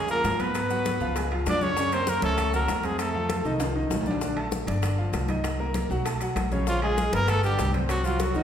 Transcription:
Already playing: F2
0.08 F3 A#3 F4 A#4 F5, high conga, maracas
0.24 G#2, high bongo, low bongo, high conga, high timbale, low timbale, maracas
0.39 B3 B4 B5, high conga, high timbale, maracas
0.55 high bongo, high conga, high timbale, maracas
0.70 F#3 F#4 F#5, high bongo, high conga, maracas
0.85 high bongo, high conga, high timbale, low timbale, maracas
1.00 C#2 F3 F4 F5, high bongo, high conga, maracas
1.16 G#3 G#4 G#5, high bongo, high conga, high timbale, maracas
1.31 F3 F4 F5, high conga, high timbale
1.46 F#2 D4 D5, high bongo, low bongo, high conga, high timbale, low timbale, maracas
1.61 C#3 C#4 C#5, high bongo, high conga, maracas
1.77 C#3 C#4 C#5, high bongo, high conga, maracas
1.92 A#3 C4 A#4 C5 A#5, high conga, high timbale, maracas
2.07 A#3 A#4, high bongo, high conga, low timbale, maracas
2.22 C#2 A3 C#4 A4 C#5 C#6, high conga, high timbale, maracas
2.38 high bongo, high conga, low conga, high timbale, maracas
2.53 F#3 A#3 F#4 A#4 F#5, high conga, low conga, maracas
2.68 F2, high bongo, low bongo, high timbale, low timbale, maracas
2.83 G#3 C4 G#4 C5 C6, high conga, high timbale, maracas
2.99 A3 A4, high bongo, high conga, high timbale, maracas
3.14 F3 F4 F5, high bongo, high conga
3.29 high bongo, high conga, high timbale, low timbale, maracas
3.44 C2 D#3 D#4 D#5, high bongo, high conga, maracas
3.60 F3 F4 F5, high bongo, high conga, high timbale, maracas
3.75 D#3 D#4 D#5, high conga
3.90 A#1, high bongo, low bongo, high conga, low timbale, maracas
4.01 low timbale
4.06 D3 D4 D5, high bongo, high conga, maracas
4.11 low timbale
4.21 D3 D4 D5, high bongo, high conga, maracas
4.37 A3 A4 A5, high conga, high timbale
4.52 high bongo, high conga, low timbale, maracas
4.67 G1 D4 D5 D6, high conga, high timbale, maracas
4.83 high bongo, high conga, low conga, high timbale, maracas
4.98 F3 F4 F5, high conga
5.13 C2, high bongo, low bongo, high conga, high timbale, low timbale, maracas
5.28 D#4 D#5 D#6, high conga, high timbale, maracas
5.44 high bongo, high conga, high timbale, maracas
5.59 A#3 A#4 A#5, high bongo, high conga
5.74 high bongo, high conga, high timbale, low timbale, maracas
5.90 B1 F#3 F#4 F#5, high bongo, high conga, maracas
6.05 A3 A4 A5, high bongo, high conga, high timbale, maracas
6.21 F#3 F#4 F#5, high conga, high timbale, maracas
6.36 A#1, high bongo, low bongo, high conga, high timbale, low timbale, maracas
6.52 C#3 C#4 C#5, high bongo, high conga, maracas
6.67 C#3 F3 C#4 F4 C#5, high bongo, high conga, maracas
6.82 G#3 G#4 G#5, high conga, high timbale
6.97 high bongo, high conga, low timbale, maracas
7.12 G1 A#3 B3 A#4 B4 B5, high conga, high timbale, maracas
7.28 A3 A4, high bongo, high conga, low conga, high timbale, maracas
7.43 D3 G3 D4 G4 D5, high conga, maracas
7.58 C2, high bongo, low bongo, high conga, high timbale, low timbale, maracas
7.74 C4 C5 C6, high conga, high timbale, maracas
7.88 F#3 F#4, high bongo, high conga, high timbale, maracas
8.03 F3 F#3 F4 F#4 F#5, high bongo, high conga, maracas
8.20 F#3 F#4, high bongo, high conga, high timbale, low timbale, maracas
8.35 F2 D#3 D#4 D#5, high bongo, high conga, maracas

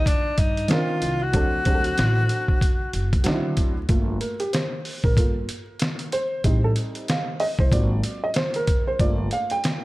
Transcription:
0.06 D4, kick, closed hi-hat
0.38 G2 D#4, kick, closed hi-hat
0.57 closed hi-hat
0.68 D#3 C4 D4 F4 A#4, snare, closed hi-hat
1.02 C2, closed hi-hat
1.23 F#4
1.33 D2 F#3 C4 D4 A4, kick, closed hi-hat
1.65 F#3 C4 D4 G4, kick, closed hi-hat
1.75 A4
1.84 closed hi-hat
1.98 A1, snare, closed hi-hat
2.29 closed hi-hat
2.48 kick
2.61 kick, closed hi-hat
2.93 F#1, closed hi-hat
3.13 D2, kick, closed hi-hat
3.24 D3 F#3 C4 D4 D#4, snare, closed hi-hat
3.34 E4
3.57 D2, kick, closed hi-hat
3.89 G1 A3 A#3 F4, kick, closed hi-hat
4.21 A#4, closed hi-hat
4.40 G4, closed hi-hat
4.53 C5, snare, closed hi-hat
4.85 open hi-hat
5.04 A#1 A#4, kick
5.17 G1 A#3 F4 A4, kick, closed hi-hat
5.49 closed hi-hat
5.80 snare, closed hi-hat
5.99 closed hi-hat
6.12 C5, closed hi-hat
6.44 A1 G3 C4 D#4, kick, closed hi-hat
6.64 A4
6.76 closed hi-hat
6.95 closed hi-hat
7.08 F5, snare, closed hi-hat
7.40 D#5, open hi-hat
7.59 C2 C5, kick
7.72 G#1 F#3 A#3 C4 F4 D5, kick, closed hi-hat
8.04 closed hi-hat
8.24 D#5
8.34 C5, snare, closed hi-hat
8.54 A#4, closed hi-hat
8.67 kick, closed hi-hat
8.87 C5
8.99 G1 A3 A#3 F4 D5, kick, closed hi-hat
9.31 F5, closed hi-hat
9.50 G5, closed hi-hat
9.64 snare, closed hi-hat

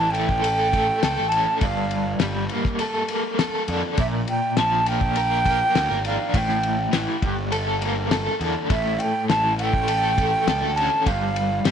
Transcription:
Already playing: A1 A2 E3 A5
0.10 A3 G5
0.14 ride
0.29 kick
0.43 A4, ride
0.72 A3, kick, ride
1.03 C#2 A4, snare, ride
1.20 A1
1.28 A5, ride
1.33 C#4
1.61 G1 G2 F5, kick, ride
1.91 ride
2.20 G1 G3, snare, ride
2.49 A#3, ride
2.65 kick, snare
2.79 A4, ride
3.08 A#3, ride
3.39 A4, snare, ride
3.68 F2 D4, ride
3.98 A#1 A#2 E5, kick, ride
4.28 G5, ride
4.57 A#1 F3 A5, snare, ride
4.86 A#3 G5, ride
5.01 kick
5.16 A#4, ride
5.45 A#3, kick, ride
5.75 D2 A#4, snare, ride
5.90 G#1, snare
6.05 D4 F5, ride
6.34 A1 A2 G5, kick, ride
6.49 snare
6.63 ride
6.93 A1 E3, snare, ride
7.22 G1 G2, kick, ride
7.52 A4, ride
7.81 A#3, ride
8.11 A4, snare, ride
8.40 E2 D4, ride
8.70 A1 A2 E5, kick, ride
8.99 G5, ride
9.28 A1 E3 A5, snare, ride
9.57 A3 G5, ride
9.73 kick
9.88 A4, ride
10.18 A3, kick, ride
10.47 C#2 A4, snare, ride
10.62 D2
10.75 C#4 A5, ride
11.06 G1 G2 F5, kick, ride
11.36 ride
11.65 G1 G3, snare, ride

